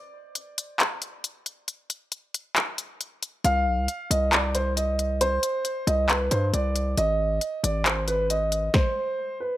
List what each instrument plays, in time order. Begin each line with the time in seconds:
0.35 closed hi-hat
0.58 closed hi-hat
0.80 clap, closed hi-hat
1.02 closed hi-hat
1.24 closed hi-hat
1.46 closed hi-hat
1.68 closed hi-hat
1.90 closed hi-hat
2.12 closed hi-hat
2.34 closed hi-hat
2.56 clap, closed hi-hat
2.78 closed hi-hat
3.01 closed hi-hat
3.23 closed hi-hat
3.44 808-style bass C2, grand piano F5, closed hi-hat
3.66 808-style bass B1
3.77 808-style bass C2
3.88 closed hi-hat
4.11 808-style bass C2, grand piano D#5, closed hi-hat
4.33 grand piano D5, clap, closed hi-hat
4.55 grand piano C5, closed hi-hat
4.77 grand piano D#5, closed hi-hat
4.99 closed hi-hat
5.21 grand piano C5, closed hi-hat
5.43 closed hi-hat
5.65 closed hi-hat
5.87 808-style bass C2, grand piano D#5, closed hi-hat
6.09 grand piano B4, clap, closed hi-hat
6.31 808-style bass G2, grand piano C5, closed hi-hat
6.53 808-style bass C2, grand piano D5, closed hi-hat
6.76 closed hi-hat
6.97 808-style bass G#1, grand piano D#5, closed hi-hat
7.41 closed hi-hat
7.63 808-style bass G#1, grand piano D5, closed hi-hat
7.86 grand piano C5, clap, closed hi-hat
8.08 grand piano B4, closed hi-hat
8.30 grand piano D#5, closed hi-hat
8.52 closed hi-hat
8.74 grand piano C5, kick, snare
9.40 grand piano B4